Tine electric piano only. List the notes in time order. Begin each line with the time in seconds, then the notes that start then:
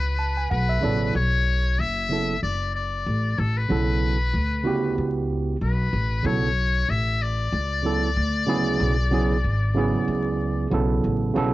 0.19 A5
0.37 G#5
0.50 F#5
0.69 E5
0.81 C#3 F#3 B3 E4 A4 D5
2.09 C#3 F#3 B3 E4 A4
3.68 C#3 F#3 B3 E4 A4
4.63 C#3 B3 E4 F#4 G4
6.23 C#3 F#3 B3 E4 A4
7.83 C#3 F#3 B3 E4 A4
8.46 C#3 F#3 B3 E4 G#4
9.10 C#3 F#3 B3 E4 G#4
9.75 C#3 F#3 B3 E4 G#4
10.70 C#3 F#3 B3 E4 A4
11.34 C#3 F#3 B3 E4 A4